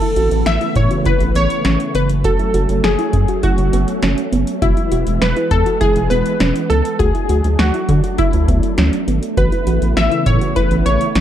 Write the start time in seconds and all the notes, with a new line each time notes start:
Already playing: C#3 E3 A3 B3 E4 A4
0.02 E4, closed hi-hat
0.16 A1 F#4, closed hi-hat
0.31 A1, closed hi-hat
0.46 A1 E5, snare, closed hi-hat
0.61 E4, closed hi-hat
0.75 A2 C#5, kick, closed hi-hat
0.91 F#4, closed hi-hat
1.05 E4 B4, kick, closed hi-hat
1.20 A1, closed hi-hat
1.35 A1 B3 C#5, closed hi-hat
1.50 closed hi-hat
1.65 A1 C#4, snare, closed hi-hat
1.80 closed hi-hat
1.95 F#1 F#3 A3 B3 C#4 B4, closed hi-hat
2.09 closed hi-hat
2.24 F#4 A4, kick, closed hi-hat
2.39 E4, closed hi-hat
2.54 F#1 F#4, closed hi-hat
2.69 F#1, closed hi-hat
2.84 F#1 G#4, snare, closed hi-hat
2.99 E4, closed hi-hat
3.13 F#2, kick, closed hi-hat
3.28 F#4, closed hi-hat
3.43 E4 F#4, kick, closed hi-hat
3.58 F#1, closed hi-hat
3.73 F#1 B3, closed hi-hat
3.88 closed hi-hat
4.02 F#1 C#4, snare, closed hi-hat
4.18 closed hi-hat
4.32 F#1 B3, closed hi-hat
4.47 closed hi-hat
4.62 E1 E3 G#3 B3 E4 F#4, kick, closed hi-hat
4.77 E4, closed hi-hat
4.92 E1 F#4, closed hi-hat
5.07 E1, closed hi-hat
5.21 E1 B4, snare, closed hi-hat
5.36 E4, closed hi-hat
5.51 E2 A4, kick, closed hi-hat
5.66 F#4, closed hi-hat
5.81 E4 G#4, kick, closed hi-hat
5.96 E1, closed hi-hat
6.10 E1 B3 B4, closed hi-hat
6.26 closed hi-hat
6.40 E1 C#4, snare, closed hi-hat
6.56 closed hi-hat
6.70 C#2 B3 A4, closed hi-hat
6.85 closed hi-hat
6.99 D2 F#3 A3 D4 F#4 G#4, kick, closed hi-hat
7.15 E4, closed hi-hat
7.29 D2 F#4, closed hi-hat
7.44 D2, closed hi-hat
7.59 D2 F#4, snare, closed hi-hat
7.74 E4, closed hi-hat
7.89 D3, kick, closed hi-hat
8.04 F#4, closed hi-hat
8.18 E4, kick, closed hi-hat
8.33 D2, closed hi-hat
8.48 D2 B3, kick, closed hi-hat
8.63 closed hi-hat
8.78 D2 C#4, snare, closed hi-hat
8.93 closed hi-hat
9.08 G#1 B3, closed hi-hat
9.23 closed hi-hat
9.37 A1 C#3 E3 B3 E4 F#4 B4, kick, closed hi-hat
9.52 E4, closed hi-hat
9.67 A1 F#4, closed hi-hat
9.82 A1, closed hi-hat
9.97 A1 E5, snare, closed hi-hat
10.12 E4, closed hi-hat
10.26 A2 C#5, kick, closed hi-hat
10.41 F#4, closed hi-hat
10.56 E4 B4, kick, closed hi-hat
10.71 A1, closed hi-hat
10.86 A1 B3 C#5, closed hi-hat
11.01 closed hi-hat
11.15 A1 C#4, snare, closed hi-hat